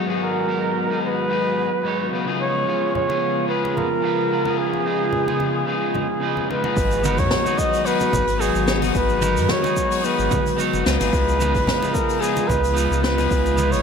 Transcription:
Already playing: analog synth pad D#3 F#3 G#3 B3 F#4
0.06 clean electric guitar G#2 B3 F#4
0.10 clean electric guitar G#4
0.23 muted trumpet A#4
0.47 clean electric guitar G#2 B3 D#4
0.51 clean electric guitar A#4
0.89 clean electric guitar G#2 B3 D#4 G#4
1.06 muted trumpet B4
1.29 clean electric guitar G#2 B3 D#4 G#4
1.83 clean electric guitar G#2 B3 D#4
1.88 clean electric guitar C#5
2.11 clean electric guitar C#3 B3 D#4 F4, analog synth pad C#3 F3 G#3 F4
2.15 clean electric guitar B4
2.26 clean electric guitar C#3 B3 D#4 F4 G#4
2.41 muted trumpet C#5
2.65 clean electric guitar C#3 B3 F4
2.69 clean electric guitar G#4
2.95 muted trumpet C#5, low conga
3.07 clean electric guitar C#3 B3 F4 G#4, muted conga
3.47 clean electric guitar C#3 B3 F4, muted trumpet B4
3.51 clean electric guitar G#4
3.65 muted conga
3.77 muted trumpet A#4, high conga, low conga
4.02 clean electric guitar C#3 B3 F4
4.06 clean electric guitar B4
4.29 clean electric guitar C#3 B3 F4 B4
4.44 clean electric guitar C#3 B3 F4, muted conga
4.48 clean electric guitar G#4
4.58 muted trumpet G#4
4.73 muted conga
4.84 clean electric guitar C#3 B3 D#4 F4 G#4
5.13 low conga
5.26 clean electric guitar C#3 B3 D#4 F4, muted conga
5.30 clean electric guitar G#4
5.40 high conga
5.65 clean electric guitar C#3 B3 D#4 F4 G#4, muted trumpet G#4
5.95 high conga, low conga
6.20 clean electric guitar C#3 B3 D#4 F4
6.24 clean electric guitar B4
6.37 high conga
6.47 clean electric guitar C#3 B3 D#4 F4 B4, muted trumpet B4, muted conga
6.62 clean electric guitar G#2 B3 D#4, muted conga
6.66 clean electric guitar G#4
6.76 sub bass G#1, analog synth pad D#3 F#3 G#3 B3 F#4, kick, open hi-hat, shaker
6.91 shaker
7.02 clean electric guitar B3 D#4 F#4, mid tom, shaker
7.07 clean electric guitar A#4
7.18 sub bass G#2, muted trumpet C#5, kick, open hi-hat, shaker
7.31 snare, open hi-hat, low conga, shaker
7.44 clean electric guitar B3 D#4 F#4 G#4, muted conga, shaker
7.58 muted trumpet D#5, kick, shaker
7.73 open hi-hat, shaker
7.84 clean electric guitar B3 D#4 F#4, muted trumpet B4, open hi-hat, shaker
7.88 clean electric guitar G#4
8.00 muted conga, shaker
8.13 sub bass G#1, kick, high conga, low conga, shaker
8.27 open hi-hat, shaker
8.38 clean electric guitar B3 D#4 F#4 C#5, muted trumpet G#4, open hi-hat, shaker
8.55 sub bass G#1, shaker
8.66 clean electric guitar B3 D#4 F#4, snare, shaker
8.70 clean electric guitar C#5
8.79 clean electric guitar B3 D#4 F#4 G#4, open hi-hat, muted conga, shaker
8.95 sub bass G#1, muted trumpet B4, kick, open hi-hat, shaker
9.09 shaker
9.20 clean electric guitar B3 D#4 F#4 A#4, mid tom, shaker
9.37 sub bass G#2, open hi-hat, shaker
9.49 muted trumpet C#5, snare, open hi-hat, low conga, shaker
9.62 clean electric guitar B3 D#4 F#4, muted conga, shaker
9.66 clean electric guitar G#4
9.77 kick, shaker
9.91 open hi-hat, shaker
10.02 clean electric guitar B3 D#4 F#4, muted trumpet B4, open hi-hat, shaker
10.06 clean electric guitar G#4
10.19 sub bass G#1, shaker
10.31 kick, mid tom, high conga, low conga, shaker
10.46 open hi-hat, shaker
10.56 clean electric guitar B3 D#4 F#4 C#5, open hi-hat, shaker
10.73 sub bass F#1, high conga, shaker
10.84 sub bass C#2, analog synth pad C#3 F3 F4, clean electric guitar B3 D#4 F4 B4, muted trumpet B4, snare, muted conga, shaker
10.98 sub bass G#1, clean electric guitar B3 D#4 F4 G#4, open hi-hat, muted conga, shaker
11.13 sub bass C#2, kick, open hi-hat, shaker
11.29 shaker
11.39 clean electric guitar B3 D#4 F4 G#4, mid tom, shaker
11.55 sub bass G#1, kick, open hi-hat, shaker
11.67 snare, open hi-hat, low conga, shaker
11.80 clean electric guitar B3 D#4 F4 G#4, muted conga, shaker
11.94 muted trumpet A#4, kick, shaker
12.09 open hi-hat, shaker
12.19 clean electric guitar B3 D#4 F4 G#4, muted trumpet G#4, open hi-hat, shaker
12.36 muted conga, shaker
12.48 sub bass C#2, muted trumpet B4, kick, high conga, low conga, shaker
12.64 open hi-hat, shaker
12.74 clean electric guitar B3 D#4 F4 B4, open hi-hat, shaker
12.91 sub bass C#2, shaker
13.02 clean electric guitar B3 D#4 F4 B4, muted trumpet B4, snare, shaker
13.15 clean electric guitar B3 D#4 F4, open hi-hat, muted conga, shaker
13.20 clean electric guitar G#4
13.31 sub bass C#2, kick, open hi-hat, shaker
13.46 muted conga, shaker
13.56 clean electric guitar B3 D#4 F4 G#4, mid tom, shaker
13.72 sub bass G#1, muted trumpet C#5, open hi-hat, shaker

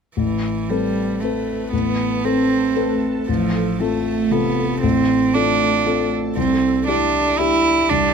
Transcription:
0.15 grand piano A1, cello E3, ambient pad A3 A4 B4
0.70 cello G3, grand piano C4 A4 B4
1.20 cello A3, grand piano C4 A4 B4
1.71 grand piano A1, cello B3
2.24 grand piano C4 A4 B4, cello C4
2.76 grand piano C4 A4 B4
3.28 grand piano A1, cello F3
3.80 cello A3, grand piano C4 F4 A4
4.31 grand piano C3 F4 A4, cello B3
4.81 grand piano A1, cello C4
5.34 grand piano C4 F4 A4, cello D4
5.85 grand piano C4 F4 A4
6.36 grand piano C2, cello C4, ambient pad D4 G4 E5
6.88 cello D4, grand piano D4 E4 G4
7.39 grand piano D4 E4 G4, cello E4
7.89 grand piano C2, cello D4

